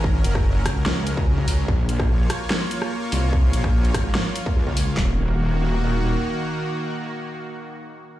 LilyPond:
<<
  \new Staff \with { instrumentName = "Supersaw synth" } { \time 4/4 \key ees \minor \tempo 4 = 146 <ges des' bes'>1 | <bes f' des''>1~ | <bes f' des''>1 | <ees bes ges'>1~ |
<ees bes ges'>1 | }
  \new Staff \with { instrumentName = "Wobble bass" } { \clef bass \time 4/4 \key ees \minor aes,,8 ges,,4 des,8 des,4 des,8 des,8 | bes,,4 bes,,8 r2 c,8~ | c,8 bes,,4 aes,,8 r4 des,4 | ees,,2. r4 |
r1 | }
  \new DrumStaff \with { instrumentName = "Drums" } \drummode { \time 4/4 bd8 hh16 <bd ss>16 r8 <hh bd ss>8 sn8 hh16 bd16 r16 bd16 hho8 | bd8 hh16 <bd ss>16 r8 <hh ss>8 sn8 hh16 ss16 r8 hho8 | bd8 hh16 <bd ss>16 r16 hh16 <hh bd ss>8 sn8 hh16 bd16 r16 bd16 hho8 | <hc bd sn>4 r4 r4 r4 |
r4 r4 r4 r4 | }
>>